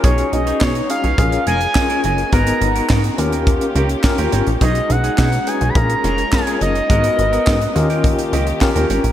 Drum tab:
HH |xxxx-xxxxxxx-xxx|xxxx-xxxxxxx-xxx|xxxx-xxxxxxx-xxx|xxxx-xxxxxxx-xxx|
CP |----x-------x---|----x-------x---|----x-------x---|----x-------x---|
SD |----o-------o---|----o-------o---|----o-------o---|----o-------o---|
BD |o---o---o---o---|o---o---o---o---|o---o---o---o---|o---o---o---o---|